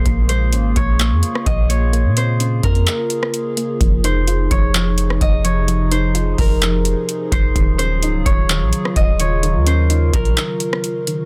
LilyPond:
<<
  \new Staff \with { instrumentName = "Harp" } { \time 4/4 \key bes \minor \tempo 4 = 128 r8 c''4 des''4. ees''8 des''8 | r8 c''4 bes'2~ bes'8 | r8 c''4 des''4. ees''8 des''8 | r8 c''4 bes'2 c''8 |
r8 c''4 des''4. ees''8 des''8 | r8 c''4 bes'2~ bes'8 | }
  \new Staff \with { instrumentName = "Ambient pad" } { \time 4/4 \key bes \minor << { aes'1~ | aes'1~ | aes'1~ | aes'1 |
aes'1 | bes'1 | } \\ { <des bes f'>1~ | <des bes f'>1 | <c f ees'>1~ | <c f ees'>1 |
<des ges f'>1~ | <des ges f'>1 | } >> }
  \new Staff \with { instrumentName = "Synth pluck" } { \time 4/4 \key bes \minor bes8 aes8 des'8 bes8 bes4. bes8 | bes8 c'8 des'8 bes8 bes4. bes8 | f8 ees'8 f'8 f8 f4. f8 | f8 ees'8 f'8 f8 f4. f8 |
ees8 des'8 ees'8 ees8 ees4. ees8 | ees8 des'8 ees'8 ees8 ees4. ees8 | }
  \new Staff \with { instrumentName = "808-style bass" } { \clef bass \time 4/4 \key bes \minor bes,,4 aes,,8 bes,,8. f,16 r8 bes,,4~ | bes,,16 bes,4~ bes,16 f,8 r2 | f,,4. f,,4. f,,4~ | f,,4. f,,4~ f,,16 r8. f,,8 |
ees,,4 des,,8 ees,,8. bes,,16 r8 ees,,4~ | ees,,16 ees,4~ ees,16 bes,,8 r2 | }
  \new DrumStaff \with { instrumentName = "Drums" } \drummode { \time 4/4 <hh bd>8 hh8 hh8 <hh bd>8 <hc hh>8 hh16 ss16 <hh bd>8 hh8 | hh8 hh8 hh8 <hh bd>16 hh16 <hc hh>8 hh16 ss16 hh8 hh8 | <hh bd>8 hh8 hh8 <hh bd>8 <hc hh>8 hh16 ss16 <hh bd>8 hh8 | hh8 hh8 hh8 <hho bd>8 <hc hh>8 hh8 hh8 <hh bd>8 |
<hh bd>8 hh8 hh8 <hh bd>8 <hc hh>8 hh16 ss16 <hh bd>8 hh8 | hh8 hh8 hh8 <hh bd>16 hh16 <hc hh>8 hh16 ss16 hh8 hh8 | }
>>